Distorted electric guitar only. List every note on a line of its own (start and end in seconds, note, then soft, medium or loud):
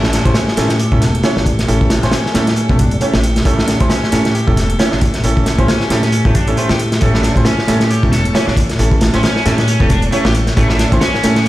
0.03 0.10 G3 loud
0.12 0.18 D4 medium
0.35 0.78 C#4 medium
0.79 0.91 G4 medium
1.01 1.13 A4 medium
1.24 1.35 C#4 medium
1.37 1.44 D4 loud
2.03 2.10 C#4 loud
2.13 2.34 C#4 medium
2.35 2.45 G3 medium
2.48 2.69 C#4 medium
2.69 2.79 A3 medium
2.79 2.91 D4 medium
3.01 3.13 A3 medium
3.14 3.21 G4 medium
3.46 3.58 A3 medium
3.58 3.66 G3 loud
3.68 3.74 D4 medium
3.90 4.34 C#4 medium
4.34 4.47 G4 medium
4.57 4.69 A4 medium
4.79 4.91 C#4 medium
4.92 4.99 D4 loud
5.58 5.66 C#4 loud
5.69 5.90 C#4 medium
5.90 6.00 G3 medium
6.03 6.24 C#4 medium
6.25 6.34 A3 medium
6.35 6.47 D4 medium
6.57 6.68 A3 medium
6.69 6.77 G4 medium
7.01 7.13 A3 medium
7.14 7.21 G3 loud
7.24 7.30 D4 medium
7.46 7.89 C#4 medium
7.90 8.02 G4 medium
8.12 8.24 A4 medium
8.35 8.46 C#4 medium
8.47 8.55 D4 loud
9.14 9.22 C#4 loud
9.24 9.45 C#4 medium
9.46 9.55 G3 medium
9.58 9.79 C#4 medium
9.80 9.90 A3 medium
9.90 10.02 D4 medium
10.12 10.24 A3 medium
10.25 10.33 G4 medium
10.57 10.69 A3 medium
10.69 10.77 G3 loud
10.79 10.85 D4 medium
11.01 11.45 C#4 medium